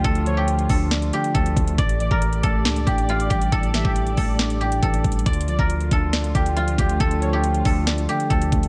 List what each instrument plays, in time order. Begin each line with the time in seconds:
Already playing: tine electric piano D3 F3 A3 D4 D5, string section D3 A3 F4, guzheng F4 G4 D5
0.04 808-style bass D2, tine electric piano D3, guzheng A4, kick, closed hi-hat
0.15 closed hi-hat
0.26 tine electric piano F3, soft synth lead C#5, closed hi-hat
0.37 guzheng G4
0.48 closed hi-hat
0.59 closed hi-hat
0.69 808-style bass D2, tine electric piano D4, guzheng A4, kick, open hi-hat
0.91 tine electric piano D5, snare, closed hi-hat
1.02 closed hi-hat
1.13 tine electric piano D3, guzheng G4, closed hi-hat
1.24 closed hi-hat
1.34 808-style bass D2, tine electric piano F3, guzheng A4, kick, closed hi-hat
1.46 closed hi-hat
1.57 808-style bass D2, tine electric piano A3, kick, closed hi-hat
1.67 closed hi-hat
1.78 808-style bass A1, tine electric piano A2, string section G4 D5, guzheng D5, kick, closed hi-hat
1.89 closed hi-hat
2.00 tine electric piano E3, soft synth lead D5, closed hi-hat
2.11 808-style bass A1, guzheng A#4, kick
2.22 closed hi-hat
2.33 closed hi-hat
2.43 808-style bass A1, tine electric piano A3, guzheng A4, kick, closed hi-hat
2.65 808-style bass C#2, tine electric piano D4, snare, closed hi-hat
2.76 closed hi-hat
2.87 808-style bass A1, tine electric piano A2, guzheng G4, kick, closed hi-hat
2.98 closed hi-hat
3.09 tine electric piano E3, guzheng F4, closed hi-hat
3.20 closed hi-hat
3.30 808-style bass A1, tine electric piano G3, guzheng G4, kick, closed hi-hat
3.41 closed hi-hat
3.52 808-style bass A1, tine electric piano A2, guzheng A4, kick, closed hi-hat
3.63 closed hi-hat
3.74 tine electric piano E3, soft synth lead E5, snare, closed hi-hat
3.85 808-style bass A1, guzheng G4, kick
3.96 closed hi-hat
4.07 closed hi-hat
4.17 808-style bass A1, tine electric piano A3, guzheng A4, kick, open hi-hat
4.39 tine electric piano D4, snare, closed hi-hat
4.50 closed hi-hat
4.61 tine electric piano A2, guzheng G4, closed hi-hat
4.72 closed hi-hat
4.83 808-style bass A1, tine electric piano E3, guzheng A4, kick, closed hi-hat
4.94 closed hi-hat
5.04 808-style bass A1, tine electric piano G3, kick, closed hi-hat
5.12 closed hi-hat
5.19 closed hi-hat
5.26 808-style bass D2, tine electric piano D3, string section D3 A3 F4, guzheng D5, kick, closed hi-hat
5.33 closed hi-hat
5.41 closed hi-hat
5.48 808-style bass C#2, tine electric piano F3, soft synth lead D5, closed hi-hat
5.59 808-style bass D2, guzheng A#4, kick
5.70 closed hi-hat
5.81 closed hi-hat
5.91 808-style bass D2, tine electric piano D4, guzheng A4, kick, closed hi-hat
6.13 tine electric piano D5, snare, closed hi-hat
6.24 closed hi-hat
6.35 808-style bass D2, tine electric piano D3, guzheng G4, kick, closed hi-hat
6.46 closed hi-hat
6.56 tine electric piano F3, guzheng F4, closed hi-hat
6.68 closed hi-hat
6.78 808-style bass D2, tine electric piano A3, guzheng G4, kick, closed hi-hat
6.89 closed hi-hat
7.00 808-style bass D2, tine electric piano D3, guzheng A4, kick, closed hi-hat
7.11 closed hi-hat
7.21 tine electric piano F3, soft synth lead C#5, closed hi-hat
7.33 guzheng G4
7.44 closed hi-hat
7.54 closed hi-hat
7.65 808-style bass D2, tine electric piano D4, guzheng A4, kick, open hi-hat
7.87 tine electric piano D5, snare, closed hi-hat
7.98 closed hi-hat
8.09 tine electric piano D3, guzheng G4, closed hi-hat
8.20 closed hi-hat
8.30 808-style bass D2, tine electric piano F3, guzheng A4, kick, closed hi-hat
8.42 closed hi-hat
8.52 808-style bass D2, tine electric piano A3, kick, closed hi-hat
8.63 closed hi-hat